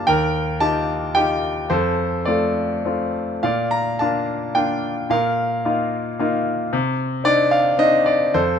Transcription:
0.07 1.66 D#2 medium
0.07 0.85 A#4 medium
0.07 0.63 G5 medium
0.60 1.04 D#4 soft
0.60 1.04 F4 soft
0.60 1.04 G4 soft
0.60 1.17 A5 medium
1.15 1.59 D#4 soft
1.15 1.60 F4 soft
1.15 1.60 G4 medium
1.15 1.71 G5 medium
1.70 3.38 F2 medium
1.70 2.27 A4 medium
1.70 2.28 C5 medium
2.25 2.73 A3 soft
2.25 2.73 C4 soft
2.25 2.74 F4 soft
2.25 3.10 A4 soft
2.25 3.09 D5 medium
2.85 3.31 A3 soft
2.85 3.31 C4 soft
2.85 3.32 F4 soft
3.43 5.06 A#2 medium
3.43 4.24 D5 medium
3.43 3.72 F5 medium
3.71 4.00 A#5 medium
3.99 4.44 A#3 soft
3.99 4.44 D4 soft
3.99 4.45 F4 soft
3.99 4.56 A5 medium
4.55 4.99 A#3 soft
4.55 4.99 D4 soft
4.55 4.99 F4 soft
4.55 5.11 G5 medium
5.10 6.69 A#2 medium
5.10 6.43 A#4 medium
5.10 6.43 F5 medium
5.65 6.09 A#3 soft
5.65 6.09 D#4 soft
5.65 6.09 F4 medium
6.19 6.62 A#3 medium
6.19 6.62 D#4 soft
6.19 6.62 F4 medium
6.73 8.30 C3 medium
7.24 7.67 C4 soft
7.24 7.68 D4 soft
7.24 7.68 D#4 medium
7.24 7.50 D5 medium
7.51 7.80 F5 medium
7.78 8.23 C4 soft
7.78 8.23 D4 soft
7.78 8.23 D#4 soft
7.78 8.05 D#5 medium
8.06 8.35 D5 medium
8.34 8.59 F2 medium
8.34 8.59 A4 medium
8.34 8.59 C5 medium

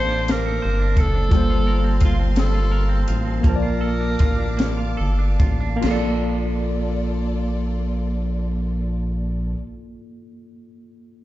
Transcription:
0.00 0.59 A1 loud
0.00 0.28 A#3 medium
0.00 1.27 A#3 medium
0.00 1.28 C4 medium
0.00 0.11 D4 medium
0.00 1.29 D4 medium
0.00 0.45 A4 medium
0.00 0.33 C5 loud
0.00 0.62 C5 medium
0.00 1.27 C5 medium
0.00 1.30 C5 medium
0.00 1.30 F5 medium
0.00 5.79 A5 medium
0.00 1.27 D6 medium
0.11 0.79 D4 medium
0.28 1.31 A#3 medium
0.28 1.02 A#4 loud
0.28 snare loud
0.28 closed hi-hat medium
0.46 0.98 A4 medium
0.62 0.95 G1 medium
0.62 1.67 C5 medium
0.80 1.15 D4 medium
0.97 1.28 F#1 medium
0.97 1.49 A4 medium
0.97 2.03 A4 loud
0.97 kick medium
0.97 closed hi-hat medium
1.15 1.84 D4 medium
1.29 3.04 G1 loud
1.29 3.39 G3 medium
1.29 2.36 G3 medium
1.29 5.78 A#3 medium
1.29 3.40 F4 medium
1.29 3.42 F5 medium
1.29 3.41 A5 medium
1.29 3.42 C6 medium
1.29 kick loud
1.29 closed hi-hat medium
1.34 3.40 A#3 medium
1.34 3.43 C5 medium
1.50 2.00 F4 medium
1.67 2.71 A#4 medium
1.84 2.18 C4 medium
2.00 2.54 F4 medium
2.00 kick medium
2.00 closed hi-hat medium
2.05 2.36 F4 medium
2.19 2.88 C4 medium
2.36 3.43 G3 medium
2.36 3.13 A4 loud
2.36 snare loud
2.36 closed hi-hat medium
2.54 3.07 F4 medium
2.72 3.80 A#4 medium
2.89 3.24 C4 medium
3.08 3.42 A1 loud
3.08 3.62 F4 medium
3.08 closed hi-hat medium
3.25 3.51 C4 medium
3.41 4.16 A#1 loud
3.41 5.75 A#3 medium
3.41 4.57 A#3 medium
3.41 5.78 F4 medium
3.41 5.80 F5 medium
3.41 5.79 D6 medium
3.41 kick loud
3.41 closed hi-hat medium
3.47 4.96 A#4 loud
3.47 3.54 C5 medium
3.47 5.80 A5 medium
3.56 5.84 D5 medium
3.62 4.20 F4 medium
3.81 4.97 A4 medium
4.00 4.38 D4 medium
4.19 4.95 A1 medium
4.19 4.77 F4 medium
4.19 kick loud
4.19 closed hi-hat medium
4.39 5.18 D4 medium
4.57 5.76 A#3 medium
4.57 snare loud
4.57 closed hi-hat medium
4.77 5.39 F4 medium
4.97 5.37 G1 medium
4.97 5.90 A4 medium
5.19 5.60 D4 medium
5.39 5.79 A1 loud
5.39 5.87 F4 medium
5.39 kick medium
5.39 closed hi-hat medium
5.60 5.82 D4 medium
5.76 9.47 A#3 medium
5.76 9.52 A#3 medium
5.81 9.55 A#1 medium
5.81 9.54 A#3 medium
5.81 9.58 D4 medium
5.81 9.52 F4 medium
5.81 9.54 F4 medium
5.81 9.54 A4 medium
5.81 9.54 D5 medium
5.81 snare loud
5.81 crash medium
5.86 9.62 F4 medium
5.86 9.58 A4 medium
5.91 9.66 A4 loud
5.91 9.62 D5 medium

